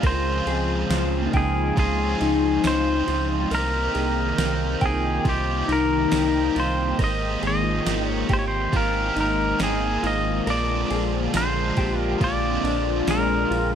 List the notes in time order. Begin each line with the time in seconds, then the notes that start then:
Already playing: G#3 F4
0.01 C#2 C#3 F3 G#3 C4 A#4, kick, ride
0.07 C4 F4 C5
0.46 C#2 G#4, ride
0.90 C#2, snare, ride, tambourine
1.22 A#3
1.26 D#4
1.33 C#2 G#4 G5, kick, ride
1.76 C#2 C#3 G#3 C4 F4 G#4, kick, ride
2.20 C#2 D#4, ride
2.63 C#2 C#3 G#3 C5, snare, ride, tambourine
2.68 C4 F4
3.07 C#2 F4, ride
3.24 D#4
3.50 C2 C3 D#3 A#3 D#4 A#4 G5, ride
3.54 G4 A#4
3.95 C2 G#4, ride
4.38 C2 A#3 D#4, snare, ride, tambourine
4.81 C2 C4 G5, kick, ride
4.86 D#4 G#4
4.92 F4
5.25 C2 C3 G3 A#3 D#4 F4 G4, kick, ride
5.29 G4
5.68 C2 D#4, ride
5.72 A#4
6.11 C2 G3 A#3, snare, ride, tambourine
6.15 D#4 G4
6.55 C2 F4, ride
6.60 C5
6.98 G#1 G#3 A#3 D#4 A#4, kick, ride
7.02 G4 C5 D#5
7.42 G#1 G#4, ride
7.47 D#5
7.62 F4
7.85 G#1 A#3 D#4 G4, snare, ride, tambourine
7.90 C5
8.10 C#5
8.29 G#1 G4, kick, ride
8.33 C5
8.39 C#5
8.48 C5
8.72 G#1 G#3 A#3 D#4 F4 G4 C5, kick, ride
8.76 A#4
9.16 G#1 D#4, ride
9.20 A#4
9.58 G#1 A#3 D#4, snare, ride, tambourine
9.63 G#4 C5
10.03 G#1 F4 D#5, ride
10.46 A#1 A#2 D3 F3 G#3 C4 D4 F4 A#4 D5, ride
10.51 C5
10.91 A#1 G#4, ride
11.34 A#1 G#3 D4 F4 C5, snare, ride, tambourine
11.39 C5
11.77 A#1 G4, kick, ride
11.84 D4
11.89 F4
11.94 G4
12.00 A#4
12.19 A#1 A#2 F3 F4, kick, ride
12.23 G#3 D4 F4 D5
12.28 C5
12.64 A#1 D4, ride
13.07 A#1 A#4, snare, ride, tambourine
13.16 G#4
13.51 A#1 F4, ride